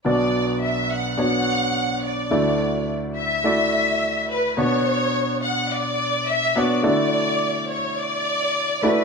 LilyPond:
<<
  \new Staff \with { instrumentName = "Violin section" } { \time 4/4 \key b \minor \tempo 4 = 106 d''4 e''8 fis''8 fis''4. d''8~ | d''4 r8 e''2 b'8 | cis''4. fis''8 d''4 e''8 d''8 | d''4. cis''8 d''4. b'8 | }
  \new Staff \with { instrumentName = "Grand piano" } { \time 4/4 \key b \minor <b d' fis' d''>4. r8 <b d' fis' cis''>4. r8 | <a e' fis' d''>4. r8 <a e' fis' d''>4. r8 | <b d' fis' cis''>4. r2 <b d' fis' cis''>8 | <a e' fis' d''>4. r2 <a e' fis' d''>8 | }
  \new Staff \with { instrumentName = "Grand piano" } { \clef bass \time 4/4 \key b \minor <b,, b,>1 | <d, d>1 | b,4. r2 r8 | d4. r2 r8 | }
>>